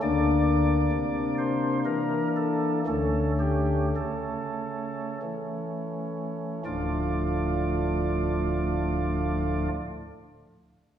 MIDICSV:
0, 0, Header, 1, 2, 480
1, 0, Start_track
1, 0, Key_signature, -1, "minor"
1, 0, Tempo, 917431
1, 17, Time_signature, 3, 2, 24, 8
1, 977, Tempo, 998336
1, 1457, Tempo, 1090909
1, 1937, Tempo, 1257862
1, 2417, Tempo, 1456311
1, 4320, End_track
2, 0, Start_track
2, 0, Title_t, "Pipe organ"
2, 0, Program_c, 0, 19
2, 10, Note_on_c, 0, 58, 46
2, 10, Note_on_c, 0, 62, 46
2, 13, Note_on_c, 0, 74, 105
2, 14, Note_on_c, 0, 38, 66
2, 15, Note_on_c, 0, 50, 73
2, 470, Note_off_c, 0, 38, 0
2, 471, Note_off_c, 0, 50, 0
2, 479, Note_on_c, 0, 48, 60
2, 704, Note_off_c, 0, 74, 0
2, 723, Note_on_c, 0, 72, 96
2, 937, Note_off_c, 0, 72, 0
2, 959, Note_off_c, 0, 48, 0
2, 971, Note_on_c, 0, 52, 60
2, 971, Note_on_c, 0, 70, 87
2, 1175, Note_off_c, 0, 70, 0
2, 1218, Note_on_c, 0, 69, 98
2, 1423, Note_off_c, 0, 69, 0
2, 1435, Note_off_c, 0, 58, 0
2, 1435, Note_off_c, 0, 62, 0
2, 1440, Note_off_c, 0, 52, 0
2, 1456, Note_on_c, 0, 38, 64
2, 1456, Note_on_c, 0, 57, 43
2, 1459, Note_on_c, 0, 61, 37
2, 1461, Note_on_c, 0, 50, 63
2, 1461, Note_on_c, 0, 69, 93
2, 1657, Note_off_c, 0, 69, 0
2, 1690, Note_on_c, 0, 67, 98
2, 1900, Note_off_c, 0, 67, 0
2, 1922, Note_off_c, 0, 38, 0
2, 1925, Note_off_c, 0, 50, 0
2, 1939, Note_on_c, 0, 49, 53
2, 1940, Note_on_c, 0, 69, 71
2, 2404, Note_off_c, 0, 49, 0
2, 2404, Note_off_c, 0, 69, 0
2, 2419, Note_on_c, 0, 52, 51
2, 2879, Note_off_c, 0, 57, 0
2, 2880, Note_off_c, 0, 52, 0
2, 2880, Note_off_c, 0, 61, 0
2, 2891, Note_on_c, 0, 74, 57
2, 2892, Note_on_c, 0, 26, 51
2, 2892, Note_on_c, 0, 38, 53
2, 2892, Note_on_c, 0, 45, 42
2, 2892, Note_on_c, 0, 53, 43
2, 2892, Note_on_c, 0, 57, 41
2, 2892, Note_on_c, 0, 65, 42
2, 2893, Note_on_c, 0, 62, 45
2, 3889, Note_off_c, 0, 38, 0
2, 3889, Note_off_c, 0, 45, 0
2, 3889, Note_off_c, 0, 57, 0
2, 3889, Note_off_c, 0, 65, 0
2, 3889, Note_off_c, 0, 74, 0
2, 3890, Note_off_c, 0, 26, 0
2, 3890, Note_off_c, 0, 53, 0
2, 3890, Note_off_c, 0, 62, 0
2, 4320, End_track
0, 0, End_of_file